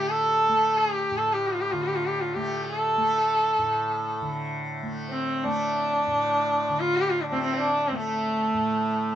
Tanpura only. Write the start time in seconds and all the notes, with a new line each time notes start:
Already playing: A2 D3 A3
0.49 A3
1.11 A2
1.73 D3
2.36 A3
2.98 A3
3.58 A2
4.21 D3
4.83 A3
5.45 A3
6.07 A2
6.69 D3
7.31 A3
7.92 A3
8.54 A2